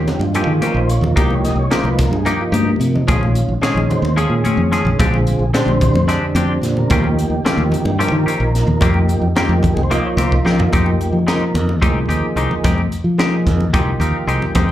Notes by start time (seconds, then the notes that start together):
Already playing: F3 D#4 G4
0.07 C#4, snare, closed hi-hat, low conga
0.19 G2 F4, muted conga, low conga
0.34 F3 A#3 C4 C#4 D#4 F4 G4, closed hi-hat
0.47 D#3 G#4
0.61 C4 C#4 G4 A#4, muted fingered electric bass stroke, closed hi-hat, high conga, low conga
0.74 A#1 C5
0.89 C#5, closed hi-hat
1.01 D#2, low conga
1.06 F4
1.16 C2 F3 A#3 D#4 G4 A#4, kick, closed hi-hat, muted conga
1.30 C#5, high conga, low conga
1.44 D#5, snare, closed hi-hat, low conga
1.56 C2 C#5
1.70 F3 A#3 D#4 F4 G4 C5, snare, closed hi-hat
1.84 C2 B4, high conga
1.99 A#4, kick, snare, closed hi-hat, low conga
2.11 G2, muted conga
2.15 G#4
2.25 F3 A#3 D#4 G4, closed hi-hat, low conga
2.42 F4
2.52 G2 D#4 G4, closed hi-hat, high conga
2.69 G3
2.80 C3 A#3, closed hi-hat
2.95 D#4, low conga
3.07 A#1 D#3 F3 G#3 C4 C#4 F4 G#4, kick, closed hi-hat, muted conga
3.23 G#3, high conga
3.35 closed hi-hat
3.49 A#1
3.61 D#3 F3 G#3 C4 C#4 D#4 G#4, muted fingered electric bass stroke, snare, closed hi-hat
3.75 A#1, high conga, low conga
3.90 C5, closed hi-hat, low conga
4.02 D#2, muted conga, low conga
4.17 D#3 F3 G#3 C4 C#4 G#4, closed hi-hat
4.30 A#2
4.43 C4 C#4 G#4, muted fingered electric bass stroke, closed hi-hat, high conga, low conga
4.57 F2
4.72 F3 C4 C#4 G#4, snare, closed hi-hat
4.85 A#1, low conga
4.99 A#1 D3 G#3 C4 D4 F4 G4, kick, closed hi-hat, muted conga
5.14 high conga
5.27 closed hi-hat
5.39 A#1
5.54 D3 G3 G#3 C4 D4 G4 C5, snare, closed hi-hat
5.66 A#1, high conga, low conga
5.81 kick, closed hi-hat, low conga
5.94 F2, muted conga, low conga
6.07 D3 G3 G#3 C4 D4 G4, snare, closed hi-hat
6.35 F2 C4 D4 G4, closed hi-hat, high conga, low conga
6.61 A#2, snare, closed hi-hat
6.77 A#4, low conga
6.90 D#2 F3 A#3 C4 C#4 D#4 G4, kick, closed hi-hat, muted conga
7.04 G4, high conga
7.19 closed hi-hat
7.30 D#2
7.44 F3 A#3 C4 C#4 D#4 G4, muted fingered electric bass stroke, snare, closed hi-hat
7.57 D#2 G4, high conga, low conga
7.72 closed hi-hat, low conga
7.85 G2, muted conga, low conga
7.99 F3 A#3 C4 C#4 D#4 G4 A#4, closed hi-hat
8.12 D#3
8.26 C4 C#4 G4, muted fingered electric bass stroke, closed hi-hat, low conga
8.40 A#1 A#4
8.55 snare, closed hi-hat
8.67 D#2, low conga
8.81 F2 D#3 F3 A#3 C4 D#4 G4, kick, closed hi-hat, muted conga, low conga
8.94 high conga
9.08 closed hi-hat, low conga
9.21 F2, low conga
9.35 D#3 F3 A#3 C4 D#4 G4, snare, closed hi-hat
9.49 F2, high conga, low conga
9.63 kick, closed hi-hat, low conga
9.74 C2 G#4, muted conga
9.83 C5
9.91 D#3 F3 A#3 C4 D#4 F4 G4 D#5, closed hi-hat
10.05 C#5, low conga
10.17 C2 A#3 C4 G4 C5, closed hi-hat, high conga
10.32 kick, low conga
10.45 D#3 F3 A#3 C4 G4, snare
10.59 floor tom, low conga
10.73 F2 F3 G#3 A#3 C4 D#4 G4, kick, closed hi-hat, muted conga
10.86 high conga
11.01 closed hi-hat
11.13 F3, low conga
11.27 F3 G#3 A#3 C4 D#4 G4 A#4, snare, closed hi-hat
11.54 F2, closed hi-hat, low conga
11.69 muted conga, low conga
11.82 C2 F3 G#3 A#3 C4 D#4 G4 G#4, kick, closed hi-hat, high conga, low conga
12.09 D#2 C4 D#4 G4, closed hi-hat, low conga
12.36 C2 G#3 C4 D#4 G4, closed hi-hat
12.51 low conga
12.64 F2 G#3 C4 D#4 G4, kick, closed hi-hat, muted conga
12.78 high conga
12.92 closed hi-hat
13.04 F3, low conga
13.18 F3 G#3 A#3 C4 D#4 G4 G#4, snare, closed hi-hat
13.46 F2, kick, snare, closed hi-hat, low conga
13.60 muted conga, low conga
13.73 C2 F3 G#3 A#3 C4 D#4 G4, kick, closed hi-hat, high conga, low conga
14.00 D#2 C4 D#4 G4 F5, closed hi-hat, low conga
14.27 C2 G#3 C4 D#4 G4 G5, closed hi-hat
14.42 low conga
14.55 F2 G#3 C4 D#4 G4, kick, closed hi-hat, muted conga